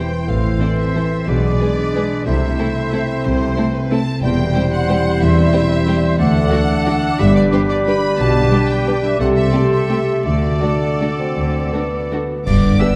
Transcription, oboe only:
0.00 0.27 C5 soft
0.27 1.29 C5 medium
1.27 2.26 B4 medium
2.26 3.93 C5 medium
4.22 6.15 C5 medium
6.19 7.21 A4 medium
7.19 9.19 B4 medium
9.19 10.23 A4 medium
10.25 12.26 A4 medium
12.46 12.77 D5 medium
12.79 12.87 E5 medium

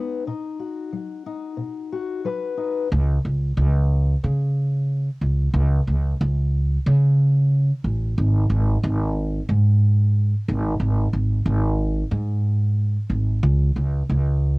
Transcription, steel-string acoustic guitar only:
0.00 0.19 G#3 medium
0.00 0.27 B3 soft
0.00 0.26 D#4 soft
0.00 0.23 B4 soft
0.27 0.87 B2 medium
0.27 1.25 D#4 soft
0.59 1.91 F#4 soft
0.92 1.52 F#3 soft
1.26 2.56 D#4 soft
1.57 2.18 B2 soft
1.92 2.88 F#4 soft
2.25 2.85 F#3 soft
2.25 2.88 B4 soft
2.57 2.87 D#4 soft

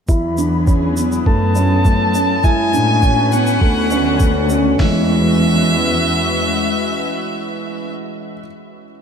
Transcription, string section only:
0.09 2.44 F#3 medium
0.33 2.91 E4 medium
0.40 2.91 B3 medium
0.62 1.26 G#4 medium
1.80 2.44 A4 medium
2.44 4.78 G#3 medium
2.97 4.79 C#4 medium
2.97 4.79 F#4 medium
2.97 4.79 B4 medium
4.80 7.91 G#3 medium
4.89 7.91 C#4 medium
4.97 7.90 F#4 medium
5.05 7.90 B4 medium

